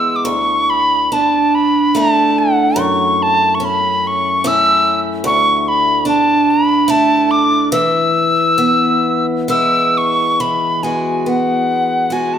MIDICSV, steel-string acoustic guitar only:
0, 0, Header, 1, 2, 480
1, 0, Start_track
1, 0, Tempo, 860832
1, 130, Time_signature, 3, 2, 24, 8
1, 1087, Tempo, 824176
1, 4447, Tempo, 867052
1, 4927, Tempo, 907716
1, 5887, Tempo, 851064
1, 7006, End_track
2, 0, Start_track
2, 0, Title_t, "Steel-string acoustic guitar"
2, 0, Program_c, 0, 25
2, 0, Note_on_c, 0, 52, 59
2, 0, Note_on_c, 0, 56, 36
2, 0, Note_on_c, 0, 59, 40
2, 0, Note_on_c, 0, 64, 37
2, 139, Note_on_c, 0, 38, 74
2, 155, Note_off_c, 0, 52, 0
2, 182, Note_off_c, 0, 56, 0
2, 182, Note_off_c, 0, 59, 0
2, 623, Note_on_c, 0, 62, 56
2, 640, Note_off_c, 0, 64, 0
2, 1086, Note_on_c, 0, 57, 54
2, 1087, Note_off_c, 0, 62, 0
2, 1092, Note_on_c, 0, 62, 51
2, 1097, Note_on_c, 0, 64, 51
2, 1556, Note_off_c, 0, 38, 0
2, 1559, Note_on_c, 0, 42, 81
2, 1616, Note_off_c, 0, 62, 0
2, 2048, Note_on_c, 0, 61, 54
2, 2532, Note_off_c, 0, 61, 0
2, 2536, Note_off_c, 0, 57, 0
2, 2538, Note_on_c, 0, 57, 57
2, 2540, Note_on_c, 0, 61, 64
2, 2544, Note_off_c, 0, 64, 0
2, 2546, Note_on_c, 0, 64, 54
2, 3001, Note_off_c, 0, 42, 0
2, 3003, Note_on_c, 0, 38, 80
2, 3057, Note_off_c, 0, 61, 0
2, 3476, Note_on_c, 0, 62, 59
2, 3493, Note_off_c, 0, 64, 0
2, 3955, Note_off_c, 0, 62, 0
2, 3956, Note_off_c, 0, 57, 0
2, 3958, Note_on_c, 0, 57, 62
2, 3963, Note_on_c, 0, 62, 60
2, 3967, Note_on_c, 0, 64, 69
2, 4445, Note_off_c, 0, 38, 0
2, 4448, Note_on_c, 0, 52, 81
2, 4495, Note_off_c, 0, 57, 0
2, 4498, Note_off_c, 0, 62, 0
2, 4923, Note_on_c, 0, 59, 59
2, 5401, Note_on_c, 0, 56, 51
2, 5404, Note_off_c, 0, 59, 0
2, 5406, Note_on_c, 0, 59, 42
2, 5407, Note_off_c, 0, 64, 0
2, 5409, Note_on_c, 0, 64, 61
2, 5884, Note_off_c, 0, 52, 0
2, 5886, Note_on_c, 0, 52, 57
2, 6128, Note_off_c, 0, 56, 0
2, 6130, Note_on_c, 0, 56, 41
2, 6133, Note_off_c, 0, 59, 0
2, 6134, Note_off_c, 0, 64, 0
2, 6136, Note_on_c, 0, 59, 34
2, 6136, Note_on_c, 0, 66, 46
2, 6366, Note_off_c, 0, 59, 0
2, 6373, Note_on_c, 0, 59, 42
2, 6840, Note_off_c, 0, 56, 0
2, 6841, Note_off_c, 0, 59, 0
2, 6846, Note_on_c, 0, 56, 44
2, 6849, Note_on_c, 0, 59, 39
2, 6850, Note_off_c, 0, 66, 0
2, 6856, Note_on_c, 0, 66, 46
2, 7006, Note_off_c, 0, 52, 0
2, 7006, Note_off_c, 0, 56, 0
2, 7006, Note_off_c, 0, 59, 0
2, 7006, Note_off_c, 0, 66, 0
2, 7006, End_track
0, 0, End_of_file